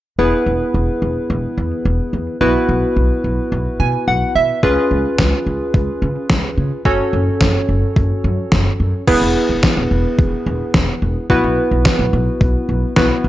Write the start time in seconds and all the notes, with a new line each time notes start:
0.19 E1 B3 E4 G#4 B4
0.46 E1
0.74 E1
1.02 E1
1.30 E1
1.58 E2
1.85 E1
2.13 E2
2.41 B1 B3 E4 F#4 B4
2.69 B1
2.96 B1
3.24 B1
3.52 B1
3.80 B2 G#5
4.08 B1 F#5
4.35 B2 E5
4.63 C#2 C#4 F4 G#4 B4, kick
4.91 C#2
5.18 C#2, kick, snare
5.46 C#2
5.74 C#2, kick
6.02 C#3
6.30 C#2, kick, snare
6.58 C#3
6.85 F#1 C#4 F#4 A4 C#5, kick
7.13 F#1
7.41 F#1, kick, snare
7.69 F#1
7.96 F#1, kick
8.24 F#2
8.52 F#1, kick, snare
8.80 F#2
9.07 E1 B3 E4 G#4 B4, kick, crash
9.22 E1
9.49 E1
9.63 kick, snare
9.77 E1
9.91 E1
10.19 E1, kick
10.46 E1
10.74 E1, kick, snare
11.02 E1
11.30 B1 B3 E4 F#4 B4, kick
11.44 B1
11.71 B1
11.85 kick, snare
11.99 B1
12.13 B1
12.41 B1, kick
12.69 B1
12.96 B1 B3 E4 F#4 B4, kick, snare
13.24 B1